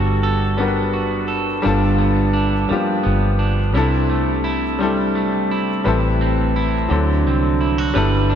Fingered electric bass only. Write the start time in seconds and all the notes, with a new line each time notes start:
Already playing: G1
1.66 G1
2.71 muted fingered electric bass stroke
3.06 G1
3.76 C2
5.87 A1
6.91 D2
7.26 C2
7.96 G1